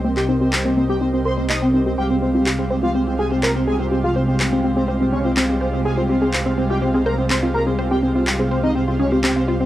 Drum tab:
CP |-x--x-------x---|----x-------x---|----x-------x---|----x-------x---|

CP |----x-------x---|